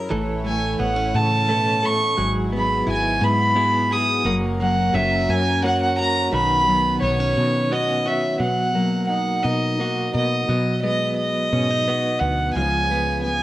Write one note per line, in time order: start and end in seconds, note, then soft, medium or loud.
0.00 0.11 F#2 medium
0.00 0.11 F#3 medium
0.00 2.88 E4 medium
0.00 4.21 E4 medium
0.00 0.11 A#4 medium
0.10 0.76 A1 medium
0.10 1.49 A2 medium
0.10 2.17 E3 medium
0.10 2.16 A3 medium
0.10 1.49 A4 medium
0.10 2.16 C#5 medium
0.44 1.48 A3 medium
0.44 2.14 A3 medium
0.44 0.79 G#5 medium
0.80 1.12 A1 medium
0.80 0.96 B3 medium
0.80 2.14 C#5 medium
0.80 1.18 F#5 medium
0.96 1.49 C#4 soft
1.14 2.14 A2 medium
1.14 1.50 C#3 medium
1.14 1.87 A5 medium
1.49 1.83 B2 medium
1.49 2.25 A3 medium
1.49 2.25 C#4 medium
1.49 1.82 A4 medium
1.83 2.18 A2 medium
1.83 2.18 A4 medium
1.83 2.19 C#6 loud
2.17 2.83 G#1 medium
2.17 4.21 G#2 medium
2.17 5.68 F#3 medium
2.17 4.23 G#3 medium
2.17 4.23 F#4 medium
2.17 3.56 G#4 medium
2.52 4.21 G#3 medium
2.52 3.54 B3 medium
2.57 2.87 B5 medium
2.87 3.19 G#1 medium
2.87 3.55 E4 medium
2.87 3.58 F#4 medium
2.91 3.25 G#5 medium
3.21 4.21 G#2 medium
3.21 4.26 B3 medium
3.21 3.94 B5 medium
3.56 4.25 B3 medium
3.56 4.32 E4 medium
3.56 4.95 F#4 medium
3.56 3.90 G#4 medium
3.91 4.25 G#4 medium
3.91 4.26 G#4 medium
3.91 4.26 D#6 medium
4.25 4.90 F#1 medium
4.25 6.31 F#2 medium
4.25 6.30 F#3 medium
4.25 4.59 A#3 medium
4.25 8.36 C#4 medium
4.25 5.65 F#4 medium
4.25 6.30 A#4 medium
4.60 6.65 F#3 medium
4.60 5.63 A#3 medium
4.60 4.96 F#5 medium
4.94 5.26 F#1 medium
4.94 5.63 C#4 medium
4.94 5.64 F#4 medium
4.94 5.32 E5 medium
5.29 6.28 F#2 medium
5.29 6.29 C#4 medium
5.29 5.64 G#5 medium
5.64 6.40 A#3 medium
5.64 6.40 C#4 medium
5.64 7.01 F#4 medium
5.64 5.98 F#4 medium
5.64 5.80 F#5 medium
5.83 5.98 F#5 medium
5.98 6.33 F#4 medium
5.98 6.28 A#4 medium
5.98 6.31 A#5 loud
6.32 6.98 B1 medium
6.32 8.36 B2 medium
6.32 8.38 D#3 medium
6.32 8.39 D#3 medium
6.32 7.71 F#4 medium
6.32 8.38 B4 medium
6.32 6.99 B5 loud
6.66 8.73 F#3 medium
6.66 7.01 B3 medium
7.01 7.34 B1 medium
7.01 7.20 B3 medium
7.01 7.70 F#4 medium
7.01 7.74 C#5 medium
7.20 7.71 C#4 soft
7.37 8.36 B2 medium
7.71 8.47 B3 soft
7.71 8.47 C#4 soft
7.71 8.36 F#4 medium
7.71 8.04 F#4 medium
7.71 8.09 D#5 medium
8.06 8.47 F#4 medium
8.06 8.36 C#5 medium
8.06 8.41 E5 medium
8.39 10.43 B2 medium
8.39 9.40 B2 medium
8.39 10.48 F#3 medium
8.39 9.06 F#5 medium
8.74 10.82 F#3 medium
8.74 9.79 A#3 soft
9.09 10.44 D#4 medium
9.09 9.44 F#5 medium
9.43 10.09 B2 medium
9.43 9.79 D#4 medium
9.43 10.12 A#4 medium
9.43 10.13 D#5 medium
9.78 10.55 A#3 soft
9.78 10.56 D#4 soft
9.78 10.44 F#4 soft
9.78 10.56 F#4 soft
10.13 10.46 B2 medium
10.13 10.44 A#4 medium
10.13 10.78 D#5 medium
10.48 11.52 B2 medium
10.48 11.48 B2 medium
10.48 12.56 F#3 medium
10.82 12.51 G#3 medium
10.82 11.87 B3 medium
10.82 11.15 D#5 medium
11.17 12.21 D#5 medium
11.53 11.87 G#2 medium
11.53 12.17 B2 medium
11.53 11.70 C#4 medium
11.70 11.87 D#4 soft
11.88 12.63 B3 soft
11.88 12.64 D#4 soft
11.88 12.64 F#4 soft
12.20 12.53 D2 medium
12.20 12.56 B2 medium
12.20 12.54 F#5 medium
12.54 13.43 C#2 medium
12.54 13.43 C#3 medium
12.54 13.43 F3 medium
12.54 12.89 G#3 medium
12.54 13.24 B3 medium
12.54 13.43 F4 medium
12.54 13.20 G#5 medium
12.59 13.43 B4 medium
12.90 13.43 G#3 medium
12.90 13.43 B3 medium
13.24 13.43 B3 medium
13.24 13.43 G#5 medium